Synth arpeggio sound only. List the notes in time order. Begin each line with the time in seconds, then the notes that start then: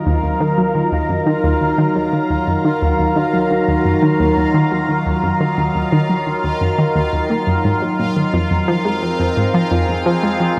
0.06 D#2
0.24 D#2
0.41 D#3
0.58 F#3
0.75 D#3
0.92 D#2
1.09 F#2
1.26 D#3
1.44 D#2
1.61 D#2
1.78 D#3
1.96 F#3
2.13 D#3
2.30 D#2
2.47 F#2
2.65 D#3
2.82 D#2
2.99 D#2
3.16 D#3
3.34 F#3
3.51 D#3
3.68 D#2
3.85 F#2
4.02 D#3
4.20 D#2
4.37 D#2
4.54 D#3
4.72 F#3
4.89 D#3
5.06 D#2
5.24 F#2
5.41 D#3
5.58 D#2
5.75 D#2
5.92 D#3
6.09 F#3
6.27 D#3
6.44 D#2
6.61 F#2
6.78 D#3
6.96 D#2
7.13 D#2
7.30 A#3
7.47 F#2
7.65 G#2
7.82 F#3
7.99 A#2
8.16 D#3
8.34 F2
8.51 F2
8.68 F3
8.85 G#3
9.03 F3
9.20 F2
9.37 G#2
9.54 F3
9.71 F2
9.89 F2
10.06 F3
10.23 G#3
10.40 F3